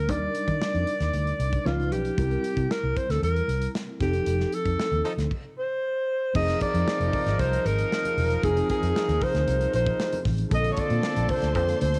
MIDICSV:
0, 0, Header, 1, 7, 480
1, 0, Start_track
1, 0, Tempo, 520833
1, 83, Time_signature, 4, 2, 24, 8
1, 11055, End_track
2, 0, Start_track
2, 0, Title_t, "String section"
2, 0, Program_c, 0, 48
2, 9686, Note_on_c, 0, 74, 61
2, 9690, Note_on_c, 0, 84, 93
2, 9691, Note_on_c, 0, 81, 76
2, 9692, Note_on_c, 0, 58, 73
2, 11055, Note_off_c, 0, 58, 0
2, 11055, Note_off_c, 0, 74, 0
2, 11055, Note_off_c, 0, 81, 0
2, 11055, Note_off_c, 0, 84, 0
2, 11055, End_track
3, 0, Start_track
3, 0, Title_t, "Alto saxophone"
3, 0, Program_c, 1, 65
3, 0, Note_on_c, 1, 70, 84
3, 93, Note_on_c, 1, 74, 99
3, 107, Note_off_c, 1, 70, 0
3, 1527, Note_on_c, 1, 65, 83
3, 1541, Note_off_c, 1, 74, 0
3, 1768, Note_on_c, 1, 67, 86
3, 1782, Note_off_c, 1, 65, 0
3, 2500, Note_on_c, 1, 70, 77
3, 2514, Note_off_c, 1, 67, 0
3, 2738, Note_on_c, 1, 72, 78
3, 2752, Note_off_c, 1, 70, 0
3, 2862, Note_on_c, 1, 69, 80
3, 2876, Note_off_c, 1, 72, 0
3, 2976, Note_off_c, 1, 69, 0
3, 2981, Note_on_c, 1, 70, 87
3, 3416, Note_off_c, 1, 70, 0
3, 3698, Note_on_c, 1, 67, 84
3, 4183, Note_on_c, 1, 69, 91
3, 4197, Note_off_c, 1, 67, 0
3, 4659, Note_off_c, 1, 69, 0
3, 5147, Note_on_c, 1, 72, 90
3, 5824, Note_off_c, 1, 72, 0
3, 5861, Note_on_c, 1, 75, 104
3, 6081, Note_off_c, 1, 75, 0
3, 6102, Note_on_c, 1, 74, 99
3, 6818, Note_on_c, 1, 72, 101
3, 6832, Note_off_c, 1, 74, 0
3, 7060, Note_on_c, 1, 70, 88
3, 7074, Note_off_c, 1, 72, 0
3, 7779, Note_on_c, 1, 68, 87
3, 7793, Note_off_c, 1, 70, 0
3, 8016, Note_off_c, 1, 68, 0
3, 8023, Note_on_c, 1, 68, 81
3, 8507, Note_on_c, 1, 72, 95
3, 8521, Note_off_c, 1, 68, 0
3, 8979, Note_off_c, 1, 72, 0
3, 8988, Note_on_c, 1, 72, 87
3, 9418, Note_off_c, 1, 72, 0
3, 9717, Note_on_c, 1, 75, 103
3, 9879, Note_on_c, 1, 73, 76
3, 9893, Note_off_c, 1, 75, 0
3, 9945, Note_on_c, 1, 74, 95
3, 9958, Note_off_c, 1, 73, 0
3, 10414, Note_on_c, 1, 72, 83
3, 10427, Note_off_c, 1, 74, 0
3, 10641, Note_off_c, 1, 72, 0
3, 10647, Note_on_c, 1, 72, 88
3, 10870, Note_off_c, 1, 72, 0
3, 10884, Note_on_c, 1, 72, 78
3, 11055, Note_off_c, 1, 72, 0
3, 11055, End_track
4, 0, Start_track
4, 0, Title_t, "Horn section"
4, 0, Program_c, 2, 61
4, 4653, Note_on_c, 2, 63, 73
4, 4656, Note_on_c, 2, 53, 75
4, 4656, Note_on_c, 2, 69, 85
4, 4730, Note_off_c, 2, 63, 0
4, 4732, Note_off_c, 2, 53, 0
4, 4732, Note_off_c, 2, 69, 0
4, 5853, Note_on_c, 2, 63, 86
4, 5855, Note_on_c, 2, 70, 89
4, 5856, Note_on_c, 2, 53, 83
4, 9413, Note_off_c, 2, 63, 0
4, 9414, Note_off_c, 2, 53, 0
4, 9414, Note_off_c, 2, 70, 0
4, 9685, Note_on_c, 2, 69, 93
4, 9687, Note_on_c, 2, 62, 89
4, 9688, Note_on_c, 2, 53, 84
4, 11055, Note_off_c, 2, 53, 0
4, 11055, Note_off_c, 2, 62, 0
4, 11055, Note_off_c, 2, 69, 0
4, 11055, End_track
5, 0, Start_track
5, 0, Title_t, "Tine electric piano"
5, 0, Program_c, 3, 4
5, 0, Control_c, 3, 64, 127
5, 0, Note_on_c, 3, 70, 58
5, 71, Note_on_c, 3, 55, 57
5, 79, Note_on_c, 3, 62, 53
5, 86, Note_on_c, 3, 63, 57
5, 93, Note_off_c, 3, 70, 0
5, 93, Note_on_c, 3, 70, 55
5, 94, Control_c, 3, 64, 0
5, 257, Control_c, 3, 64, 127
5, 1492, Note_off_c, 3, 55, 0
5, 1496, Note_off_c, 3, 62, 0
5, 1500, Note_off_c, 3, 63, 0
5, 1504, Note_off_c, 3, 70, 0
5, 1520, Note_on_c, 3, 53, 62
5, 1522, Note_on_c, 3, 61, 54
5, 1527, Note_on_c, 3, 63, 51
5, 1531, Note_on_c, 3, 71, 63
5, 1540, Control_c, 3, 64, 0
5, 1680, Control_c, 3, 64, 127
5, 1998, Note_on_c, 3, 55, 56
5, 2005, Note_off_c, 3, 53, 0
5, 2006, Note_off_c, 3, 61, 0
5, 2007, Note_on_c, 3, 60, 47
5, 2009, Note_off_c, 3, 63, 0
5, 2011, Note_off_c, 3, 71, 0
5, 2013, Note_on_c, 3, 64, 50
5, 2019, Note_on_c, 3, 70, 60
5, 2022, Control_c, 3, 64, 0
5, 2198, Control_c, 3, 64, 127
5, 3653, Note_off_c, 3, 55, 0
5, 3657, Note_off_c, 3, 60, 0
5, 3661, Note_off_c, 3, 64, 0
5, 3664, Note_off_c, 3, 70, 0
5, 3683, Note_on_c, 3, 53, 54
5, 3690, Note_on_c, 3, 60, 48
5, 3698, Note_on_c, 3, 63, 52
5, 3705, Control_c, 3, 64, 0
5, 3706, Note_on_c, 3, 69, 64
5, 3841, Control_c, 3, 64, 127
5, 4865, Note_off_c, 3, 53, 0
5, 4869, Note_off_c, 3, 60, 0
5, 4873, Note_off_c, 3, 63, 0
5, 4877, Note_off_c, 3, 69, 0
5, 4907, Control_c, 3, 64, 0
5, 5844, Note_on_c, 3, 53, 59
5, 5850, Note_on_c, 3, 60, 54
5, 5857, Note_on_c, 3, 63, 51
5, 5864, Note_on_c, 3, 68, 62
5, 6015, Control_c, 3, 64, 127
5, 7731, Note_off_c, 3, 53, 0
5, 7734, Note_off_c, 3, 60, 0
5, 7738, Note_off_c, 3, 63, 0
5, 7741, Note_off_c, 3, 68, 0
5, 7761, Note_on_c, 3, 53, 59
5, 7769, Note_on_c, 3, 60, 53
5, 7777, Note_on_c, 3, 63, 56
5, 7784, Note_on_c, 3, 68, 65
5, 9647, Note_off_c, 3, 53, 0
5, 9651, Note_off_c, 3, 60, 0
5, 9655, Note_off_c, 3, 63, 0
5, 9659, Note_off_c, 3, 68, 0
5, 9673, Note_on_c, 3, 50, 65
5, 9683, Note_on_c, 3, 58, 56
5, 9689, Note_on_c, 3, 60, 50
5, 9696, Note_on_c, 3, 69, 76
5, 9703, Control_c, 3, 64, 0
5, 9890, Control_c, 3, 64, 127
5, 11055, Note_off_c, 3, 50, 0
5, 11055, Note_off_c, 3, 58, 0
5, 11055, Note_off_c, 3, 60, 0
5, 11055, Note_off_c, 3, 69, 0
5, 11055, End_track
6, 0, Start_track
6, 0, Title_t, "Fingered electric bass"
6, 0, Program_c, 4, 33
6, 82, Note_on_c, 4, 39, 86
6, 247, Note_off_c, 4, 39, 0
6, 438, Note_on_c, 4, 51, 73
6, 523, Note_off_c, 4, 51, 0
6, 687, Note_on_c, 4, 41, 71
6, 768, Note_off_c, 4, 41, 0
6, 926, Note_on_c, 4, 39, 74
6, 1008, Note_off_c, 4, 39, 0
6, 1048, Note_on_c, 4, 38, 70
6, 1211, Note_off_c, 4, 38, 0
6, 1286, Note_on_c, 4, 36, 89
6, 1451, Note_off_c, 4, 36, 0
6, 1527, Note_on_c, 4, 37, 86
6, 1766, Note_off_c, 4, 37, 0
6, 1766, Note_on_c, 4, 35, 77
6, 1931, Note_off_c, 4, 35, 0
6, 2009, Note_on_c, 4, 36, 98
6, 2173, Note_off_c, 4, 36, 0
6, 2367, Note_on_c, 4, 48, 67
6, 2450, Note_off_c, 4, 48, 0
6, 2611, Note_on_c, 4, 36, 81
6, 2693, Note_off_c, 4, 36, 0
6, 2852, Note_on_c, 4, 38, 74
6, 2934, Note_off_c, 4, 38, 0
6, 2971, Note_on_c, 4, 40, 88
6, 3135, Note_off_c, 4, 40, 0
6, 3207, Note_on_c, 4, 36, 83
6, 3372, Note_off_c, 4, 36, 0
6, 3692, Note_on_c, 4, 29, 81
6, 3856, Note_off_c, 4, 29, 0
6, 3929, Note_on_c, 4, 29, 80
6, 4094, Note_off_c, 4, 29, 0
6, 4289, Note_on_c, 4, 41, 62
6, 4372, Note_off_c, 4, 41, 0
6, 4531, Note_on_c, 4, 39, 74
6, 4614, Note_off_c, 4, 39, 0
6, 4769, Note_on_c, 4, 38, 67
6, 4853, Note_off_c, 4, 38, 0
6, 5854, Note_on_c, 4, 29, 95
6, 6018, Note_off_c, 4, 29, 0
6, 6214, Note_on_c, 4, 41, 76
6, 6296, Note_off_c, 4, 41, 0
6, 6452, Note_on_c, 4, 29, 80
6, 6535, Note_off_c, 4, 29, 0
6, 6694, Note_on_c, 4, 32, 73
6, 6776, Note_off_c, 4, 32, 0
6, 6815, Note_on_c, 4, 36, 81
6, 6979, Note_off_c, 4, 36, 0
6, 7054, Note_on_c, 4, 32, 83
6, 7218, Note_off_c, 4, 32, 0
6, 7532, Note_on_c, 4, 28, 93
6, 7696, Note_off_c, 4, 28, 0
6, 7773, Note_on_c, 4, 29, 90
6, 7936, Note_off_c, 4, 29, 0
6, 8134, Note_on_c, 4, 41, 72
6, 8215, Note_off_c, 4, 41, 0
6, 8372, Note_on_c, 4, 39, 89
6, 8454, Note_off_c, 4, 39, 0
6, 8613, Note_on_c, 4, 38, 85
6, 8694, Note_off_c, 4, 38, 0
6, 8733, Note_on_c, 4, 36, 90
6, 8896, Note_off_c, 4, 36, 0
6, 8973, Note_on_c, 4, 34, 82
6, 9136, Note_off_c, 4, 34, 0
6, 9449, Note_on_c, 4, 33, 86
6, 9613, Note_off_c, 4, 33, 0
6, 9690, Note_on_c, 4, 34, 102
6, 9853, Note_off_c, 4, 34, 0
6, 10049, Note_on_c, 4, 46, 84
6, 10131, Note_off_c, 4, 46, 0
6, 10291, Note_on_c, 4, 34, 74
6, 10372, Note_off_c, 4, 34, 0
6, 10531, Note_on_c, 4, 38, 77
6, 10648, Note_off_c, 4, 38, 0
6, 10648, Note_on_c, 4, 41, 82
6, 10811, Note_off_c, 4, 41, 0
6, 10891, Note_on_c, 4, 38, 93
6, 11053, Note_off_c, 4, 38, 0
6, 11055, End_track
7, 0, Start_track
7, 0, Title_t, "Drums"
7, 82, Note_on_c, 9, 36, 88
7, 83, Note_on_c, 9, 42, 81
7, 174, Note_off_c, 9, 36, 0
7, 175, Note_off_c, 9, 42, 0
7, 319, Note_on_c, 9, 42, 65
7, 412, Note_off_c, 9, 42, 0
7, 440, Note_on_c, 9, 36, 76
7, 444, Note_on_c, 9, 42, 44
7, 532, Note_off_c, 9, 36, 0
7, 536, Note_off_c, 9, 42, 0
7, 568, Note_on_c, 9, 38, 109
7, 660, Note_off_c, 9, 38, 0
7, 689, Note_on_c, 9, 42, 28
7, 781, Note_off_c, 9, 42, 0
7, 804, Note_on_c, 9, 42, 49
7, 896, Note_off_c, 9, 42, 0
7, 925, Note_on_c, 9, 42, 43
7, 928, Note_on_c, 9, 38, 35
7, 1018, Note_off_c, 9, 42, 0
7, 1021, Note_off_c, 9, 38, 0
7, 1046, Note_on_c, 9, 42, 54
7, 1138, Note_off_c, 9, 42, 0
7, 1171, Note_on_c, 9, 42, 30
7, 1264, Note_off_c, 9, 42, 0
7, 1290, Note_on_c, 9, 42, 59
7, 1382, Note_off_c, 9, 42, 0
7, 1407, Note_on_c, 9, 42, 45
7, 1408, Note_on_c, 9, 36, 76
7, 1500, Note_off_c, 9, 36, 0
7, 1500, Note_off_c, 9, 42, 0
7, 1533, Note_on_c, 9, 38, 81
7, 1626, Note_off_c, 9, 38, 0
7, 1654, Note_on_c, 9, 42, 29
7, 1747, Note_off_c, 9, 42, 0
7, 1770, Note_on_c, 9, 42, 53
7, 1862, Note_off_c, 9, 42, 0
7, 1888, Note_on_c, 9, 42, 40
7, 1980, Note_off_c, 9, 42, 0
7, 2009, Note_on_c, 9, 36, 99
7, 2009, Note_on_c, 9, 42, 79
7, 2101, Note_off_c, 9, 36, 0
7, 2101, Note_off_c, 9, 42, 0
7, 2130, Note_on_c, 9, 42, 30
7, 2222, Note_off_c, 9, 42, 0
7, 2249, Note_on_c, 9, 42, 59
7, 2341, Note_off_c, 9, 42, 0
7, 2368, Note_on_c, 9, 36, 73
7, 2371, Note_on_c, 9, 42, 46
7, 2460, Note_off_c, 9, 36, 0
7, 2463, Note_off_c, 9, 42, 0
7, 2497, Note_on_c, 9, 38, 100
7, 2589, Note_off_c, 9, 38, 0
7, 2733, Note_on_c, 9, 36, 87
7, 2733, Note_on_c, 9, 42, 60
7, 2825, Note_off_c, 9, 36, 0
7, 2825, Note_off_c, 9, 42, 0
7, 2857, Note_on_c, 9, 42, 46
7, 2860, Note_on_c, 9, 38, 32
7, 2949, Note_off_c, 9, 42, 0
7, 2952, Note_off_c, 9, 38, 0
7, 2978, Note_on_c, 9, 42, 58
7, 3070, Note_off_c, 9, 42, 0
7, 3099, Note_on_c, 9, 42, 33
7, 3191, Note_off_c, 9, 42, 0
7, 3217, Note_on_c, 9, 42, 60
7, 3309, Note_off_c, 9, 42, 0
7, 3332, Note_on_c, 9, 42, 52
7, 3424, Note_off_c, 9, 42, 0
7, 3457, Note_on_c, 9, 38, 92
7, 3549, Note_off_c, 9, 38, 0
7, 3691, Note_on_c, 9, 36, 89
7, 3692, Note_on_c, 9, 42, 56
7, 3696, Note_on_c, 9, 38, 32
7, 3783, Note_off_c, 9, 36, 0
7, 3784, Note_off_c, 9, 42, 0
7, 3788, Note_off_c, 9, 38, 0
7, 3809, Note_on_c, 9, 42, 39
7, 3901, Note_off_c, 9, 42, 0
7, 3929, Note_on_c, 9, 42, 78
7, 4021, Note_off_c, 9, 42, 0
7, 4056, Note_on_c, 9, 38, 28
7, 4148, Note_off_c, 9, 38, 0
7, 4169, Note_on_c, 9, 42, 60
7, 4261, Note_off_c, 9, 42, 0
7, 4289, Note_on_c, 9, 36, 67
7, 4293, Note_on_c, 9, 42, 44
7, 4381, Note_off_c, 9, 36, 0
7, 4386, Note_off_c, 9, 42, 0
7, 4419, Note_on_c, 9, 38, 93
7, 4511, Note_off_c, 9, 38, 0
7, 4539, Note_on_c, 9, 42, 27
7, 4631, Note_off_c, 9, 42, 0
7, 4654, Note_on_c, 9, 42, 49
7, 4746, Note_off_c, 9, 42, 0
7, 4778, Note_on_c, 9, 42, 41
7, 4781, Note_on_c, 9, 38, 34
7, 4870, Note_off_c, 9, 42, 0
7, 4873, Note_off_c, 9, 38, 0
7, 4895, Note_on_c, 9, 36, 76
7, 4897, Note_on_c, 9, 49, 67
7, 4987, Note_off_c, 9, 36, 0
7, 4989, Note_off_c, 9, 49, 0
7, 5852, Note_on_c, 9, 49, 92
7, 5853, Note_on_c, 9, 36, 102
7, 5945, Note_off_c, 9, 36, 0
7, 5945, Note_off_c, 9, 49, 0
7, 5962, Note_on_c, 9, 62, 31
7, 5972, Note_on_c, 9, 42, 50
7, 5977, Note_on_c, 9, 38, 30
7, 6054, Note_off_c, 9, 62, 0
7, 6064, Note_off_c, 9, 42, 0
7, 6069, Note_off_c, 9, 38, 0
7, 6089, Note_on_c, 9, 42, 64
7, 6090, Note_on_c, 9, 63, 63
7, 6095, Note_on_c, 9, 36, 81
7, 6181, Note_off_c, 9, 42, 0
7, 6182, Note_off_c, 9, 63, 0
7, 6188, Note_off_c, 9, 36, 0
7, 6217, Note_on_c, 9, 42, 49
7, 6309, Note_off_c, 9, 42, 0
7, 6326, Note_on_c, 9, 62, 26
7, 6337, Note_on_c, 9, 38, 113
7, 6418, Note_off_c, 9, 62, 0
7, 6430, Note_off_c, 9, 38, 0
7, 6457, Note_on_c, 9, 42, 44
7, 6549, Note_off_c, 9, 42, 0
7, 6572, Note_on_c, 9, 46, 61
7, 6575, Note_on_c, 9, 36, 91
7, 6582, Note_on_c, 9, 63, 68
7, 6582, Note_on_c, 9, 64, 64
7, 6665, Note_off_c, 9, 46, 0
7, 6667, Note_off_c, 9, 36, 0
7, 6674, Note_off_c, 9, 63, 0
7, 6674, Note_off_c, 9, 64, 0
7, 6695, Note_on_c, 9, 42, 43
7, 6698, Note_on_c, 9, 38, 30
7, 6787, Note_off_c, 9, 42, 0
7, 6791, Note_off_c, 9, 38, 0
7, 6812, Note_on_c, 9, 62, 27
7, 6812, Note_on_c, 9, 63, 59
7, 6815, Note_on_c, 9, 36, 80
7, 6816, Note_on_c, 9, 42, 67
7, 6905, Note_off_c, 9, 62, 0
7, 6905, Note_off_c, 9, 63, 0
7, 6907, Note_off_c, 9, 36, 0
7, 6908, Note_off_c, 9, 42, 0
7, 6932, Note_on_c, 9, 62, 29
7, 6941, Note_on_c, 9, 42, 51
7, 7025, Note_off_c, 9, 62, 0
7, 7033, Note_off_c, 9, 42, 0
7, 7055, Note_on_c, 9, 63, 62
7, 7059, Note_on_c, 9, 42, 72
7, 7147, Note_off_c, 9, 63, 0
7, 7151, Note_off_c, 9, 42, 0
7, 7175, Note_on_c, 9, 42, 57
7, 7267, Note_off_c, 9, 42, 0
7, 7303, Note_on_c, 9, 38, 88
7, 7395, Note_off_c, 9, 38, 0
7, 7419, Note_on_c, 9, 42, 61
7, 7422, Note_on_c, 9, 63, 79
7, 7512, Note_off_c, 9, 42, 0
7, 7514, Note_off_c, 9, 63, 0
7, 7532, Note_on_c, 9, 64, 71
7, 7536, Note_on_c, 9, 46, 59
7, 7624, Note_off_c, 9, 64, 0
7, 7628, Note_off_c, 9, 46, 0
7, 7651, Note_on_c, 9, 42, 42
7, 7743, Note_off_c, 9, 42, 0
7, 7773, Note_on_c, 9, 36, 107
7, 7774, Note_on_c, 9, 42, 86
7, 7865, Note_off_c, 9, 36, 0
7, 7866, Note_off_c, 9, 42, 0
7, 7887, Note_on_c, 9, 62, 32
7, 7896, Note_on_c, 9, 42, 48
7, 7979, Note_off_c, 9, 62, 0
7, 7988, Note_off_c, 9, 42, 0
7, 8012, Note_on_c, 9, 63, 66
7, 8013, Note_on_c, 9, 42, 67
7, 8017, Note_on_c, 9, 36, 83
7, 8105, Note_off_c, 9, 42, 0
7, 8105, Note_off_c, 9, 63, 0
7, 8109, Note_off_c, 9, 36, 0
7, 8136, Note_on_c, 9, 42, 53
7, 8228, Note_off_c, 9, 42, 0
7, 8249, Note_on_c, 9, 62, 25
7, 8260, Note_on_c, 9, 38, 103
7, 8341, Note_off_c, 9, 62, 0
7, 8352, Note_off_c, 9, 38, 0
7, 8377, Note_on_c, 9, 42, 47
7, 8469, Note_off_c, 9, 42, 0
7, 8489, Note_on_c, 9, 46, 55
7, 8493, Note_on_c, 9, 36, 93
7, 8501, Note_on_c, 9, 63, 63
7, 8501, Note_on_c, 9, 64, 57
7, 8581, Note_off_c, 9, 46, 0
7, 8585, Note_off_c, 9, 36, 0
7, 8593, Note_off_c, 9, 63, 0
7, 8593, Note_off_c, 9, 64, 0
7, 8613, Note_on_c, 9, 42, 47
7, 8616, Note_on_c, 9, 38, 34
7, 8705, Note_off_c, 9, 42, 0
7, 8708, Note_off_c, 9, 38, 0
7, 8730, Note_on_c, 9, 62, 29
7, 8730, Note_on_c, 9, 63, 59
7, 8733, Note_on_c, 9, 42, 61
7, 8822, Note_off_c, 9, 62, 0
7, 8822, Note_off_c, 9, 63, 0
7, 8825, Note_off_c, 9, 42, 0
7, 8847, Note_on_c, 9, 62, 32
7, 8854, Note_on_c, 9, 42, 49
7, 8939, Note_off_c, 9, 62, 0
7, 8946, Note_off_c, 9, 42, 0
7, 8970, Note_on_c, 9, 63, 59
7, 8971, Note_on_c, 9, 42, 74
7, 9063, Note_off_c, 9, 42, 0
7, 9063, Note_off_c, 9, 63, 0
7, 9089, Note_on_c, 9, 42, 51
7, 9091, Note_on_c, 9, 36, 96
7, 9181, Note_off_c, 9, 42, 0
7, 9183, Note_off_c, 9, 36, 0
7, 9213, Note_on_c, 9, 38, 96
7, 9215, Note_on_c, 9, 62, 32
7, 9305, Note_off_c, 9, 38, 0
7, 9308, Note_off_c, 9, 62, 0
7, 9331, Note_on_c, 9, 42, 58
7, 9338, Note_on_c, 9, 62, 35
7, 9338, Note_on_c, 9, 63, 83
7, 9423, Note_off_c, 9, 42, 0
7, 9430, Note_off_c, 9, 62, 0
7, 9430, Note_off_c, 9, 63, 0
7, 9446, Note_on_c, 9, 64, 68
7, 9448, Note_on_c, 9, 46, 63
7, 9449, Note_on_c, 9, 36, 87
7, 9451, Note_on_c, 9, 38, 35
7, 9538, Note_off_c, 9, 64, 0
7, 9540, Note_off_c, 9, 46, 0
7, 9541, Note_off_c, 9, 36, 0
7, 9543, Note_off_c, 9, 38, 0
7, 9567, Note_on_c, 9, 42, 44
7, 9659, Note_off_c, 9, 42, 0
7, 9688, Note_on_c, 9, 42, 85
7, 9689, Note_on_c, 9, 36, 107
7, 9780, Note_off_c, 9, 42, 0
7, 9781, Note_off_c, 9, 36, 0
7, 9808, Note_on_c, 9, 42, 51
7, 9900, Note_off_c, 9, 42, 0
7, 9921, Note_on_c, 9, 42, 69
7, 9924, Note_on_c, 9, 63, 66
7, 9930, Note_on_c, 9, 36, 91
7, 10014, Note_off_c, 9, 42, 0
7, 10016, Note_off_c, 9, 63, 0
7, 10022, Note_off_c, 9, 36, 0
7, 10045, Note_on_c, 9, 42, 44
7, 10138, Note_off_c, 9, 42, 0
7, 10159, Note_on_c, 9, 62, 30
7, 10169, Note_on_c, 9, 38, 124
7, 10251, Note_off_c, 9, 62, 0
7, 10261, Note_off_c, 9, 38, 0
7, 10286, Note_on_c, 9, 62, 27
7, 10288, Note_on_c, 9, 42, 47
7, 10378, Note_off_c, 9, 62, 0
7, 10380, Note_off_c, 9, 42, 0
7, 10402, Note_on_c, 9, 46, 65
7, 10407, Note_on_c, 9, 36, 94
7, 10414, Note_on_c, 9, 63, 68
7, 10414, Note_on_c, 9, 64, 65
7, 10494, Note_off_c, 9, 46, 0
7, 10499, Note_off_c, 9, 36, 0
7, 10506, Note_off_c, 9, 63, 0
7, 10506, Note_off_c, 9, 64, 0
7, 10524, Note_on_c, 9, 42, 47
7, 10527, Note_on_c, 9, 38, 36
7, 10616, Note_off_c, 9, 42, 0
7, 10620, Note_off_c, 9, 38, 0
7, 10642, Note_on_c, 9, 62, 30
7, 10642, Note_on_c, 9, 63, 73
7, 10644, Note_on_c, 9, 42, 61
7, 10646, Note_on_c, 9, 36, 80
7, 10734, Note_off_c, 9, 62, 0
7, 10734, Note_off_c, 9, 63, 0
7, 10736, Note_off_c, 9, 42, 0
7, 10738, Note_off_c, 9, 36, 0
7, 10769, Note_on_c, 9, 42, 48
7, 10861, Note_off_c, 9, 42, 0
7, 10884, Note_on_c, 9, 63, 70
7, 10885, Note_on_c, 9, 42, 76
7, 10976, Note_off_c, 9, 63, 0
7, 10977, Note_off_c, 9, 42, 0
7, 11004, Note_on_c, 9, 42, 59
7, 11055, Note_off_c, 9, 42, 0
7, 11055, End_track
0, 0, End_of_file